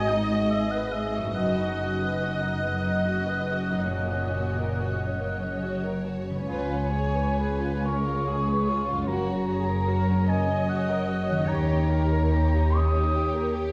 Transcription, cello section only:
Already playing: G#2
1.33 F#2
2.62 F#2
3.89 A#2
5.19 F#2
6.47 C#2
9.06 F#2
11.47 D#2

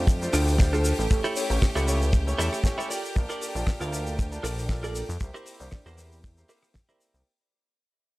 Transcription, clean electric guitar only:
0.33 D4 F4 A4 D5
0.73 D4 F4 A4 C5
1.24 E4 G4 A4 C#5
1.75 E4 G4 A4 C#5
2.38 E4 G4 A4 E5
2.78 E4 G4 A4 C#5
2.89 F4 A4 A#4 D5
3.29 F4 A4 A#4 D5
3.80 F4 A4 A#4 F5
4.43 F4 A4 A#4 D5
4.83 F4 A4 A#4 D5
5.34 E4 G4 A#4 C5
5.86 E4 G4 A#4 C5
6.49 E4 G4 A#4 C5
6.89 E4 G4 A#4 C5

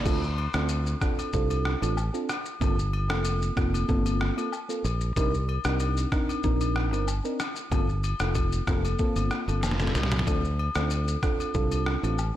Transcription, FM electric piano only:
0.05 C4 D4 F4 A4
0.54 C4 D4 F4 A4
1.01 C4 D4 F4 A4
1.33 C4 D4 F4 A4
1.82 C4 D4 F4 A4
2.13 C4 D4 F4 A4
2.60 A#3 C4 F4 A4
3.09 A#3 C4 F4 A4
3.56 A#3 C4 F4 A4
3.88 A#3 C4 F4 A4
4.37 A#3 C4 F4 A4
4.69 A#3 C4 F4 A4
5.16 C4 D4 D#4 A#4
5.64 C4 D4 D#4 A#4
6.12 C4 D4 D#4 A#4
6.44 C4 D4 D#4 A#4
6.92 C4 D4 D#4 A#4
7.24 C4 D4 D#4 A#4
7.71 A#3 C4 F4 A4
8.20 A#3 C4 F4 A4
8.67 A#3 C4 F4 A4
8.99 A#3 C4 F4 A4
9.48 A#3 C4 F4 A4
9.79 A#3 C4 F4 A4
10.27 C4 D4 F4 A4
10.75 C4 D4 F4 A4
11.22 C4 D4 F4 A4
11.54 C4 D4 F4 A4
12.03 C4 D4 F4 A4

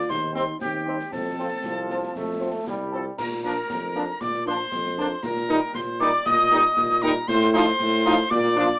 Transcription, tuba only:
0.09 D#2
0.61 D#2
1.12 F2
1.64 C2
2.16 F2
2.67 C2
3.18 A#2
3.70 F2
4.21 A#2
4.72 F2
5.23 A#2
5.74 A#2
6.26 A#2
6.77 A#2
7.29 A2
7.80 A2
8.31 A#2

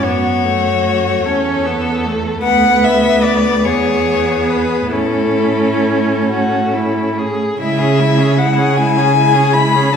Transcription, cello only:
0.04 F#2
1.25 E2
2.44 D2
3.64 E2
4.92 A2
7.59 C#3
8.77 C#3
9.93 D3

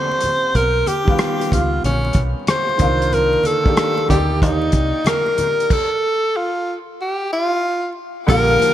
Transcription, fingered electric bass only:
0.55 B1
1.52 C#2
1.84 A#1
2.15 B1
2.80 C2
4.10 D2
4.42 D#2
4.73 C2
8.29 A#1

